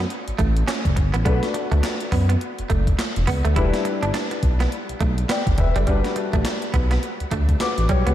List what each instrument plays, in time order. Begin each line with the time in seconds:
Already playing: grand piano A3 D4 F#4 C#5
0.10 closed hi-hat
0.28 analog synth bass A1, closed hi-hat
0.39 analog synth bass A1, clean electric guitar A3, kick, closed hi-hat
0.57 closed hi-hat
0.68 clean electric guitar C#4, snare, clap, closed hi-hat
0.85 analog synth bass F#1, kick, closed hi-hat
0.96 analog synth bass G1, muted clean electric guitar stroke, kick, closed hi-hat
1.14 analog synth bass A1, clean electric guitar B3, closed hi-hat
1.25 analog synth bass B1, grand piano A3 D4 F#4 B4, clean electric guitar B3, kick, closed hi-hat
1.43 snare, closed hi-hat
1.54 muted clean electric guitar stroke, closed hi-hat
1.72 analog synth bass D2, clean electric guitar A3, kick, closed hi-hat
1.83 muted clean electric guitar stroke, snare, clap, closed hi-hat
2.00 closed hi-hat
2.12 analog synth bass F#2, clean electric guitar B3, kick, open hi-hat
2.29 clean electric guitar B3, closed hi-hat
2.41 closed hi-hat
2.59 analog synth bass F#1, closed hi-hat
2.70 analog synth bass F#1, clean electric guitar A3, kick, closed hi-hat
2.87 kick, closed hi-hat
2.99 muted clean electric guitar stroke, snare, clap, closed hi-hat
3.16 analog synth bass E1, closed hi-hat
3.27 analog synth bass C#2, clean electric guitar B3, kick, open hi-hat
3.45 analog synth bass D2, clean electric guitar A3, closed hi-hat
3.56 analog synth bass E1, grand piano G3 D4 E4 B4, clean electric guitar E4, kick, closed hi-hat
3.74 snare, closed hi-hat
3.85 muted clean electric guitar stroke, closed hi-hat
4.03 analog synth bass G1, clean electric guitar D4, closed hi-hat
4.14 clean electric guitar D4, snare, clap, closed hi-hat
4.31 muted clean electric guitar stroke, closed hi-hat
4.43 analog synth bass B1, kick, closed hi-hat
4.60 clean electric guitar B3, snare, closed hi-hat
4.72 closed hi-hat
4.89 analog synth bass B1, closed hi-hat
5.01 analog synth bass B1, clean electric guitar A3, kick, closed hi-hat
5.18 closed hi-hat
5.29 clean electric guitar B3, grand piano D5 G5, snare, clap, closed hi-hat
5.47 analog synth bass G1, kick, closed hi-hat
5.58 analog synth bass E1, grand piano B4 E5, muted clean electric guitar stroke, kick, closed hi-hat
5.76 analog synth bass F#1, clean electric guitar G3, grand piano A4 D5, closed hi-hat
5.87 analog synth bass G1, grand piano G3 D4 F#4 B4, clean electric guitar G3, kick, closed hi-hat
6.04 snare, closed hi-hat
6.16 muted clean electric guitar stroke, closed hi-hat
6.33 analog synth bass A1, clean electric guitar A3, kick, closed hi-hat
6.45 muted clean electric guitar stroke, snare, clap, closed hi-hat
6.62 closed hi-hat
6.74 analog synth bass B1, clean electric guitar B3, kick, closed hi-hat
6.91 clean electric guitar B3, snare, closed hi-hat
7.03 closed hi-hat
7.20 analog synth bass D2, closed hi-hat
7.31 analog synth bass D2, clean electric guitar A3, kick, closed hi-hat
7.49 kick, closed hi-hat
7.60 grand piano F#4 B4 D6, muted clean electric guitar stroke, snare, clap, closed hi-hat
7.78 analog synth bass A1, closed hi-hat
7.89 analog synth bass B1, clean electric guitar G3, grand piano G4 C#5, kick, closed hi-hat
8.07 analog synth bass C#2, clean electric guitar B3, grand piano F#4 B4, closed hi-hat